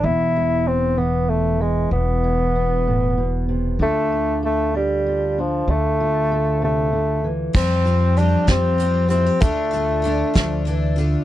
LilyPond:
<<
  \new Staff \with { instrumentName = "Twelve-string acoustic guitar" } { \time 6/8 \key d \dorian \tempo 4. = 64 r2. | r2. | r2. | r2. |
<f g c' f'>8 <g c' f'>8 <f g c' f'>8 <f g c' f'>8 <f g c' f'>8 <g c' f'>8 | <d a d' f'>8 <a d' f'>8 <d a d' f'>8 <d a d' f'>8 <d a d'>8 <a d' f'>8 | }
  \new Staff \with { instrumentName = "Bassoon" } { \time 6/8 \key d \dorian e'4 c'8 b8 a8 gis8 | b2~ b8 r8 | a4 a8 g4 f8 | a4. a4 r8 |
c'4 d'8 c'4 c'8 | a2 r4 | }
  \new Staff \with { instrumentName = "Steel-string acoustic guitar" } { \clef bass \time 6/8 \key d \dorian << { r8 gis4. r4 | r8 gis8 b2 | <d' f' a'>8 f'8 a'4 f'4 | r8 f'8 a'2 |
r4 g8 g'8 c'8 e'16 g'16 | r4 d'2 | } \\ { e,4. e4 e8 | e,4. a,8 b,8 c8 | d4. d'4 d'8 | d4. c8 d8 e8 |
f,8 f2~ f8 | d8 a4 f8 e8 d8 | } >> }
  \new Staff \with { instrumentName = "Upright bass" } { \clef bass \time 6/8 \key d \dorian e,,2. | e,,2. | d,2. | d,2. |
f,4. f,4. | d,4. d,4. | }
  \new DrumStaff \with { instrumentName = "Drums" } \drummode { \time 6/8 r4. r4. | r4. r4. | r4. r4. | r4. r4. |
<cymc bd>8 hh8 hh8 <hh bd sn>8 hh8 hh8 | <hh bd>8 hh8 hh8 <hh bd sn>8 hh8 hh8 | }
>>